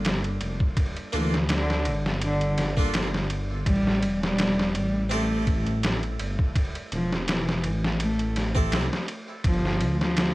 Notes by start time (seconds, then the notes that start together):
Already playing: G1 A#3 D4 F4 A4
0.05 snare, ride
0.24 ride
0.41 F1, ride
0.60 kick
0.77 kick, ride
0.97 ride
1.13 D2 E3 A#3 D4 F4 A4, ride
1.34 snare
1.49 D3, snare, ride
1.70 snare
1.85 G1, ride
2.06 snare
2.21 D3, ride
2.41 ride
2.58 snare, ride
2.77 A#3 D4 F4 A4, kick
2.94 G1, snare, ride
3.14 snare
3.30 ride
3.66 A1 G3, kick, ride
3.87 snare
4.02 E1, ride
4.23 G3, snare
4.38 snare, ride
4.59 snare
4.75 A1 G3, ride
5.10 A3 C4 E4 G4 A4, ride
5.47 kick, ride
5.67 ride
5.83 snare, ride
6.03 ride
6.19 G1, ride
6.39 kick
6.55 kick, ride
6.75 ride
6.92 E1 F3, ride
7.12 snare
7.28 E3, snare, ride
7.49 snare
7.64 A1, ride
7.85 snare
8.00 A3, ride
8.19 ride
8.36 snare, ride
8.55 C4 E4 G4 A4, kick
8.72 C2, snare, ride
8.93 snare
9.08 ride
9.44 G1 F3, kick, ride
9.65 snare
9.81 D2, ride
10.01 F3, snare
10.17 snare, ride